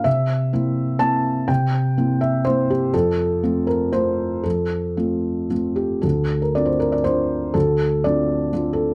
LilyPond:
\new Staff \with { instrumentName = "Felt piano" } { \time 3/4 \key d \minor \tempo 4 = 122 << { e''2 a''4 | g''4. e''8 c''8 g'8 | a'4. bes'8 c''4 | a'2 r8 g'8 |
a'8. bes'16 d''16 c''16 bes'16 d''16 c''4 | a'4 d''4 r8 a'8 | } \\ { c4 <bes c' e'>4 <bes c' e'>4 | c4 <bes c' e'>4 <bes c' e'>4 | f,4 <a c' f'>4 <a c' f'>4 | f,4 <a c' f'>4 <a c' f'>4 |
d,4 <c' d' f'>4 <c' d' f'>4 | d,4 <c' d' f'>4 <c' d' f'>4 | } >> }